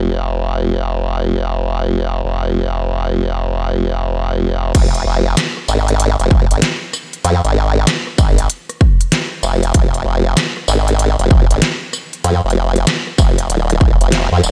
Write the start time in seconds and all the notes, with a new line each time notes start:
Already playing: F1
2.24 F1
4.75 F1, kick, closed hi-hat, crash
4.95 closed hi-hat
5.06 F1
5.37 snare, closed hi-hat
5.57 cross-stick
5.68 G#1, tambourine
5.88 closed hi-hat
6.00 closed hi-hat
6.20 F1, closed hi-hat
6.31 kick
6.51 G#1, closed hi-hat
6.62 snare, closed hi-hat
6.93 cross-stick, tambourine
7.13 closed hi-hat
7.25 F2, closed hi-hat
7.45 G#1, closed hi-hat
7.87 snare, closed hi-hat
8.07 cross-stick
8.18 G#1, kick, tambourine
8.38 closed hi-hat
8.50 closed hi-hat
8.69 cross-stick, closed hi-hat
8.81 kick, cross-stick
9.01 closed hi-hat
9.12 snare, closed hi-hat
9.43 F1, tambourine
9.63 closed hi-hat
9.74 F1, kick, closed hi-hat
9.94 closed hi-hat
10.06 F1
10.37 snare, closed hi-hat
10.57 cross-stick
10.68 G#1, tambourine
10.88 closed hi-hat
10.99 closed hi-hat
11.19 F1, closed hi-hat
11.31 kick
11.51 G#1, closed hi-hat
11.62 snare, closed hi-hat
11.93 cross-stick, tambourine
12.13 closed hi-hat
12.24 F2, closed hi-hat
12.44 F1
12.50 closed hi-hat
12.76 closed hi-hat
12.87 snare, closed hi-hat
13.07 cross-stick
13.18 F1, kick, tambourine
13.38 closed hi-hat
13.50 D#1, closed hi-hat
13.70 cross-stick, closed hi-hat
13.81 kick, cross-stick
14.01 F1, closed hi-hat
14.12 snare, closed hi-hat
14.32 F2
14.43 D#1, tambourine